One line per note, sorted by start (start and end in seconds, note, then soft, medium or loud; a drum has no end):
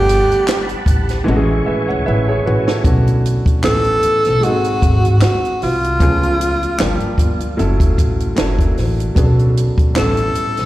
0.00 0.19 G1 loud
0.00 1.22 D3 medium
0.00 1.23 G3 medium
0.00 1.24 A3 medium
0.00 1.24 B3 medium
0.00 0.88 G4 loud
0.00 1.25 G4 medium
0.00 1.25 F#5 medium
0.00 1.25 A5 medium
0.00 1.25 B5 medium
0.09 closed hi-hat medium
0.31 muted upright bass stroke soft
0.31 closed hi-hat soft
0.48 snare loud
0.48 clap loud
0.48 closed hi-hat medium
0.69 muted upright bass stroke soft
0.69 closed hi-hat soft
0.86 1.19 A1 medium
0.86 kick medium
0.86 closed hi-hat medium
1.09 snare soft
1.09 closed hi-hat soft
1.24 2.80 E3 medium
1.24 2.81 G#3 medium
1.24 2.82 A3 medium
1.24 2.83 E5 medium
1.24 2.83 G#5 medium
1.24 2.83 C#6 medium
1.28 1.59 A1 loud
1.28 2.82 C#4 medium
1.28 1.36 F#4 medium
1.36 1.70 G#4 medium
1.66 1.87 B4 medium
1.66 1.87 E5 medium
1.66 muted upright bass stroke soft
1.88 2.04 C#2 medium
1.88 2.05 C#5 medium
1.88 2.05 F#5 medium
2.06 2.39 A1 loud
2.06 2.27 B4 medium
2.06 2.27 E5 medium
2.28 2.45 G#4 medium
2.28 2.45 C#5 medium
2.46 2.64 A1 loud
2.46 2.67 F#4 medium
2.46 2.66 B4 medium
2.68 3.05 E4 medium
2.68 3.05 A4 medium
2.68 snare loud
2.83 3.35 B1 medium
2.83 3.63 D3 medium
2.83 3.62 A3 medium
2.83 3.63 B3 medium
2.83 3.63 C#4 medium
2.83 3.64 F#4 medium
2.83 kick loud
2.83 closed hi-hat medium
3.07 closed hi-hat soft
3.26 closed hi-hat medium
3.46 kick medium
3.46 closed hi-hat soft
3.63 3.96 A1 medium
3.63 4.42 E3 medium
3.63 4.42 A3 medium
3.63 4.43 B3 medium
3.63 4.43 C#4 medium
3.63 4.44 G4 medium
3.63 4.45 A4 loud
3.63 snare loud
3.63 clap medium
3.63 closed hi-hat medium
3.84 closed hi-hat soft
4.03 muted upright bass stroke soft
4.03 closed hi-hat medium
4.25 4.45 B1 medium
4.25 snare soft
4.25 closed hi-hat soft
4.40 5.96 F#3 medium
4.40 5.97 G#3 medium
4.40 4.50 A#3 soft
4.40 5.22 F#4 medium
4.40 closed hi-hat medium
4.44 4.76 G#1 medium
4.44 5.98 D#4 medium
4.44 5.99 G#4 medium
4.49 6.01 C4 medium
4.64 closed hi-hat soft
4.82 5.01 G#1 medium
4.82 kick medium
4.82 closed hi-hat medium
5.05 5.19 G#2 medium
5.05 closed hi-hat soft
5.21 5.64 F#4 medium
5.21 snare loud
5.21 clap medium
5.21 closed hi-hat medium
5.45 closed hi-hat soft
5.62 6.01 C2 medium
5.62 7.20 F4 medium
5.62 snare soft
5.62 open hi-hat soft
5.84 closed hi-hat medium
5.99 6.65 C#2 medium
5.99 6.77 F3 medium
5.99 6.79 A3 medium
5.99 6.79 B3 medium
5.99 6.80 C#4 medium
5.99 6.80 G#4 medium
5.99 kick loud
5.99 closed hi-hat medium
6.23 closed hi-hat soft
6.41 closed hi-hat medium
6.63 closed hi-hat soft
6.78 6.98 G1 medium
6.78 7.58 F3 medium
6.78 7.58 G3 medium
6.78 7.58 A#3 medium
6.78 7.59 D4 medium
6.78 7.59 G4 medium
6.78 snare loud
6.78 clap medium
6.78 closed hi-hat medium
7.00 muted upright bass stroke soft
7.00 closed hi-hat soft
7.18 7.51 G1 medium
7.18 kick medium
7.18 closed hi-hat medium
7.40 closed hi-hat soft
7.57 7.91 F#1 medium
7.57 8.34 F#3 medium
7.57 8.37 A3 medium
7.57 8.37 C#4 medium
7.57 8.37 E4 medium
7.57 8.37 A4 medium
7.57 closed hi-hat medium
7.80 kick medium
7.80 closed hi-hat soft
7.98 8.30 A1 medium
7.98 kick medium
7.98 closed hi-hat medium
8.20 closed hi-hat soft
8.36 8.70 F#1 medium
8.36 9.13 F#3 medium
8.36 9.16 A#3 medium
8.36 9.16 D4 medium
8.36 9.17 E4 medium
8.36 9.17 A4 medium
8.36 snare loud
8.36 clap medium
8.36 closed hi-hat medium
8.59 kick medium
8.59 closed hi-hat soft
8.78 9.10 A1 medium
8.78 snare soft
8.78 open hi-hat soft
9.00 closed hi-hat soft
9.15 9.66 B1 loud
9.15 9.94 F#3 medium
9.15 9.93 B3 medium
9.15 9.94 C#4 medium
9.15 9.96 D4 medium
9.15 9.24 G#4 medium
9.15 kick loud
9.15 closed hi-hat medium
9.24 9.95 A4 medium
9.39 closed hi-hat soft
9.57 closed hi-hat medium
9.78 kick medium
9.78 closed hi-hat soft
9.94 10.28 A1 medium
9.94 10.65 G3 medium
9.94 10.65 B3 medium
9.94 10.65 C#4 medium
9.94 10.65 E4 medium
9.94 10.65 A4 medium
9.94 snare loud
9.94 clap medium
9.94 closed hi-hat medium
9.98 10.65 A4 loud
10.17 closed hi-hat soft
10.35 muted upright bass stroke soft
10.35 closed hi-hat medium
10.57 10.65 B1 medium
10.57 snare soft
10.57 closed hi-hat soft